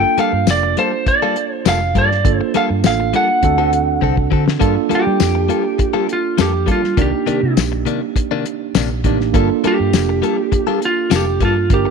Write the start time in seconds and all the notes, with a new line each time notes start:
Already playing: A#3 D4 F4 A4 G5
0.17 G3 A#3 F4 A4 F5, muted fingered electric bass stroke, closed hi-hat
0.33 G2, muted clean electric guitar stroke
0.47 F1 D5, snare, closed hi-hat, tambourine
0.63 muted clean electric guitar stroke
0.77 G3 A#3 F4 A4 C5, closed hi-hat
0.93 muted clean electric guitar stroke
1.06 D5, muted clean electric guitar stroke, kick, closed hi-hat
1.22 G3 A#3 F4 A4
1.36 muted clean electric guitar stroke, closed hi-hat
1.55 C5
1.66 F1 G3 A#3 F4 A4 F5, snare, closed hi-hat, tambourine
1.81 muted clean electric guitar stroke
1.95 G2 G3 A#3 F4 A4 D5, kick, closed hi-hat
2.11 muted clean electric guitar stroke, snare
2.24 G1 A#3 D4 F4 A4, kick, closed hi-hat
2.39 C5, muted clean electric guitar stroke
2.54 G3 A#3 F4 A4 F5, muted fingered electric bass stroke, closed hi-hat
2.70 G2, muted clean electric guitar stroke
2.83 A1 A#3 D4 F4 A4 F5, snare, closed hi-hat, tambourine
3.00 muted clean electric guitar stroke
3.14 G3 A#3 F4 A4 F#5, closed hi-hat
3.29 muted clean electric guitar stroke
3.42 D2 C4 D4 F#4 A4, muted clean electric guitar stroke, kick, closed hi-hat
3.58 D3 C4 F#4 A4
3.72 muted clean electric guitar stroke, closed hi-hat
4.01 C2 D3 C4 F#4 A4, kick
4.17 muted clean electric guitar stroke, kick
4.31 D3 C4 F#4 A4, kick
4.46 muted clean electric guitar stroke, snare
4.60 G2 G3 A#3 D4 F4 A4, kick, closed hi-hat
4.76 muted clean electric guitar stroke
4.89 G3 A#3 F4 A4, muted fingered electric bass stroke, closed hi-hat
4.95 G4
5.05 G3, muted clean electric guitar stroke
5.20 F2, snare, closed hi-hat, tambourine
5.35 muted clean electric guitar stroke
5.49 G3 A#3 F4 A4, closed hi-hat
5.79 muted clean electric guitar stroke, kick, closed hi-hat
5.93 G3 A#3 F4 A4
6.08 muted clean electric guitar stroke, closed hi-hat
6.13 F4
6.38 F2 G3 A#3 F4 G4 A4, snare, closed hi-hat, tambourine
6.53 muted clean electric guitar stroke
6.66 G3 A#3 F4 A4, kick, closed hi-hat
6.72 F4
6.83 muted clean electric guitar stroke, snare
6.97 C2 C3 D#3 A#3 D4 D#4 G4, kick, closed hi-hat
7.01 G4
7.12 muted clean electric guitar stroke
7.26 C3 D#3 A#3 D4, muted fingered electric bass stroke, closed hi-hat
7.42 C3, muted clean electric guitar stroke
7.57 A#1, snare, closed hi-hat, tambourine
7.72 muted clean electric guitar stroke
7.86 C3 D#3 A#3 D4, closed hi-hat
8.02 muted clean electric guitar stroke
8.16 muted clean electric guitar stroke, kick, closed hi-hat
8.31 C3 D#3 A#3 D4
8.46 muted clean electric guitar stroke, closed hi-hat
8.75 A#1 C3 D#3 A#3 D4, snare, closed hi-hat, tambourine
8.91 muted clean electric guitar stroke
9.04 A1 C3 D#3 A#3 D4 D#4 G4, kick, closed hi-hat
9.20 muted clean electric guitar stroke, snare
9.33 G1 G3 A#3 D4 F4 A4, kick, closed hi-hat
9.64 G3 A#3 F4 G4 A4, muted fingered electric bass stroke, closed hi-hat
9.79 G2, muted clean electric guitar stroke
9.93 F1, snare, closed hi-hat, tambourine
10.09 muted clean electric guitar stroke
10.22 G3 A#3 F4 A4, closed hi-hat
10.38 muted clean electric guitar stroke
10.52 muted clean electric guitar stroke, kick, closed hi-hat
10.67 G3 A#3 F4 A4
10.81 muted clean electric guitar stroke, closed hi-hat
10.85 F4
11.10 F1 G3 A#3 F4 A4, snare, closed hi-hat, tambourine
11.16 G4
11.26 muted clean electric guitar stroke
11.40 G2 G3 A#3 F4 A4, kick, closed hi-hat
11.45 F4
11.56 muted clean electric guitar stroke
11.70 G1 A#3 D4 F4 G4 A#4, kick, closed hi-hat
11.85 muted clean electric guitar stroke